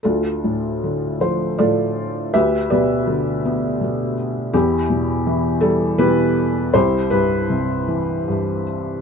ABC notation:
X:1
M:3/4
L:1/8
Q:1/4=80
K:Ddor
V:1 name="Felt piano"
[DFA]3 c [FAd]2 | [GBe] [GBd]4 z | [B,EG]3 A [EGB]2 | [EGc] [EGB]4 z |]
V:2 name="Felt piano" clef=bass
D,, A,, D, F, A,,2 | D,, B,, D, B, B,,2 | E,, B,, E, G, B,,2 | C,, G,, C, E, G,,2 |]